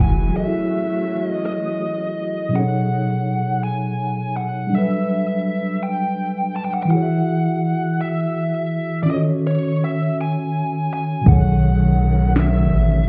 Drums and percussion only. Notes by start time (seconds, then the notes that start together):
11.26 kick, closed hi-hat
11.63 closed hi-hat
11.99 closed hi-hat
12.35 snare, closed hi-hat
12.72 closed hi-hat